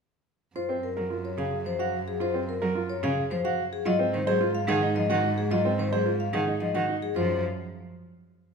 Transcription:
0.56 cello F#2, grand piano F4, vibraphone C5
0.69 grand piano C4
0.83 vibraphone A#4
0.97 cello F#3, grand piano A#4
1.10 grand piano F4
1.25 vibraphone C#5
1.38 cello C#3, grand piano G#4, vibraphone F5
1.65 cello F3, vibraphone C5
1.79 grand piano F#4, vibraphone F5
2.08 vibraphone G#4
2.20 grand piano F4, vibraphone C5
2.34 grand piano C4
2.49 vibraphone A#4
2.62 cello F#3, grand piano A#4
2.75 grand piano F4
2.90 vibraphone C#5
3.03 cello C#3, grand piano G#4, vibraphone F5
3.31 cello F3, vibraphone C5
3.45 grand piano F#4, vibraphone F5
3.73 vibraphone G#4
3.85 cello G#2 F#3, grand piano F4, vibraphone D#5
3.99 grand piano C4
4.14 cello D#3, vibraphone C5
4.27 cello F#3, vibraphone G#4, grand piano C5
4.41 grand piano F4
4.55 vibraphone F5
4.68 cello D#3, grand piano G#4, vibraphone F#5
4.82 grand piano D#4
4.96 cello F3, vibraphone D#5
5.10 cello D#3, grand piano F#4, vibraphone F#5
5.24 grand piano D#4
5.38 vibraphone G#4
5.51 cello F#3, grand piano F4, vibraphone D#5
5.65 grand piano C4
5.79 cello D#3, vibraphone C5
5.92 cello F#3, vibraphone G#4, grand piano C5
6.06 grand piano F4
6.20 vibraphone F5
6.33 cello D#3, grand piano G#4, vibraphone F#5
6.47 grand piano D#4
6.60 cello F3, vibraphone D#5
6.75 cello D#3, grand piano F#4, vibraphone F#5
6.89 grand piano D#4
7.02 vibraphone G#4
7.16 cello F#2 F3, grand piano F4, vibraphone C5

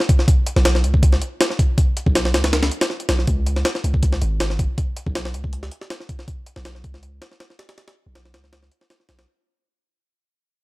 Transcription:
0.00 snare
0.09 kick, closed hi-hat
0.19 snare
0.28 kick, closed hi-hat
0.47 closed hi-hat
0.56 808-style bass B1, snare
0.65 snare, closed hi-hat
0.75 snare
0.84 808-style bass C#2, closed hi-hat
0.94 kick
1.03 kick, closed hi-hat
1.13 snare
1.22 closed hi-hat
1.41 snare, closed hi-hat
1.50 snare
1.59 kick, closed hi-hat
1.78 kick, closed hi-hat
1.97 closed hi-hat
2.06 808-style bass B1, kick
2.15 snare, closed hi-hat
2.25 snare
2.34 808-style bass C#2, snare, closed hi-hat
2.44 snare, closed hi-hat
2.53 snare, closed hi-hat
2.63 snare, closed hi-hat
2.71 closed hi-hat
2.81 snare, closed hi-hat
2.90 snare
3.00 closed hi-hat
3.09 808-style bass B1, snare, closed hi-hat
3.19 snare
3.27 808-style bass C#2, kick, closed hi-hat
3.46 closed hi-hat
3.56 snare
3.65 snare, closed hi-hat
3.75 snare
3.84 808-style bass C#2, closed hi-hat
3.94 kick
4.03 kick, closed hi-hat
4.13 snare
4.22 808-style bass G#1, closed hi-hat
4.40 snare, closed hi-hat
4.50 snare
4.59 kick, closed hi-hat
4.78 kick, closed hi-hat
4.97 closed hi-hat
5.06 808-style bass B1, kick
5.15 snare, closed hi-hat
5.25 snare
5.34 808-style bass C#2, closed hi-hat
5.44 kick
5.53 closed hi-hat
5.63 snare
5.71 closed hi-hat
5.81 snare
5.90 snare, closed hi-hat
6.00 snare
6.09 kick, closed hi-hat
6.19 snare
6.28 kick, closed hi-hat
6.46 closed hi-hat
6.56 808-style bass B1, snare
6.65 snare, closed hi-hat
6.75 snare
6.84 808-style bass C#2, kick, closed hi-hat
6.94 snare
7.03 closed hi-hat
7.22 snare, closed hi-hat
7.32 snare
7.40 snare, closed hi-hat
7.50 snare
7.59 snare, closed hi-hat
7.69 snare, closed hi-hat
7.78 snare, closed hi-hat
7.88 snare, closed hi-hat
8.06 808-style bass B1
8.15 snare, closed hi-hat
8.25 snare
8.34 808-style bass C#2, snare, closed hi-hat
8.44 snare
8.53 snare, closed hi-hat
8.63 snare
8.72 closed hi-hat
8.81 snare
8.90 snare, closed hi-hat
9.00 snare
9.09 808-style bass B1, snare, closed hi-hat
9.19 snare, closed hi-hat

